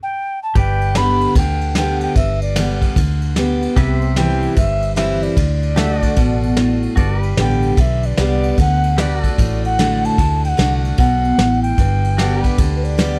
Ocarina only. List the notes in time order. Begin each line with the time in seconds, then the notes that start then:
0.03 G5
0.43 A5
0.58 G5
0.96 B5
1.37 G5
1.77 G5
2.02 G5
2.16 E5
2.42 D5
4.16 G5
4.57 E5
4.95 E5
5.23 D5
7.40 G5
7.80 E5
8.05 D5
8.60 F#5
9.00 D5
9.65 F#5
10.05 A5
10.44 F#5 G5
10.98 F#5
11.62 G5
12.75 B4
12.84 D5